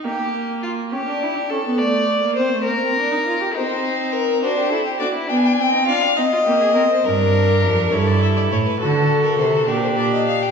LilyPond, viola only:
\new Staff \with { instrumentName = "Viola" } { \time 6/8 \key g \phrygian \tempo 4. = 68 bes4. cis'16 d'16 e'16 d'16 cis'16 b16 | a8. bes16 c'16 a16 bes16 c'16 d'16 ees'16 f'16 g'16 | c'4. d'8 e'8 d'8 | b8 c'8 d'8 c'8 bes8 c'8 |
d'4. e'4. | fis'4. g'4. | }